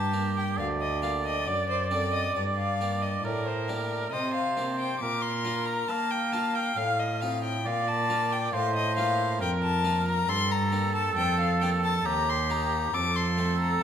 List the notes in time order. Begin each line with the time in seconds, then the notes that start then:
Already playing: G2 G4 A5
0.13 A#3 D4 G4
0.37 G5
0.58 D2 D5 F5
0.81 D#5
1.02 A#3 D4 G4 F5
1.25 D#5
1.47 F#2 D5
1.70 C5
1.91 C4 D4 A4 D5
2.14 D#5
2.36 G2 D5
2.57 F5
2.81 A#3 D4 G4
3.02 D#5
3.24 A2 A#4 D5
3.47 C5
3.68 A#3 D4 G4 D5
4.12 C3 C5 D#5
4.34 F5
4.57 A#3 D4 G4
4.79 G5
5.00 A#2 A#4 D6
5.22 C6
5.45 A#3 D4 F4
5.66 A#5
5.88 A#3 F5 A5
6.11 G5
6.33 A#3 D4 F4 A5
6.55 G5
6.76 A2 F5
7.00 D#5
7.21 C4 D#4 F4 F5
7.44 G5
7.66 A#2 D5 F5
7.88 A5
8.10 A#3 D4 F4
8.32 G5
8.53 A2 C5 F5
8.76 D#5
8.97 A#3 D4 F4 F5
9.39 F2 A#4 G5
9.64 A5
9.84 A#3 D4 F4
10.08 A#5
10.29 G2 A4 C6
10.52 A#5
10.72 A#3 D4 G4
10.95 A5
11.17 F2 G5
11.40 F5
11.61 A#3 D4 G4 G5
11.84 A5
12.05 D#2 G4 A#5
12.29 C6
12.50 A#3 D#4 G4 A#5
12.93 F2 A4 D6
13.16 C6
13.37 A3 C4 C5
13.60 A#5